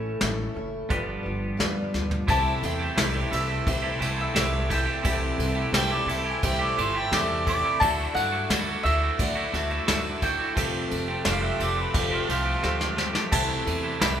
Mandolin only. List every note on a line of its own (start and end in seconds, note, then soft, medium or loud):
2.30 2.65 A5 loud
2.65 3.35 G5 loud
3.34 4.20 E5 medium
4.21 4.73 E5 loud
4.72 6.74 G5 medium
7.80 7.89 A5 loud
8.15 8.80 F#5 loud
8.83 9.66 E5 loud
9.71 10.24 E5 medium
10.23 12.25 G5 medium
13.32 14.01 A5 medium
14.02 14.20 B5 medium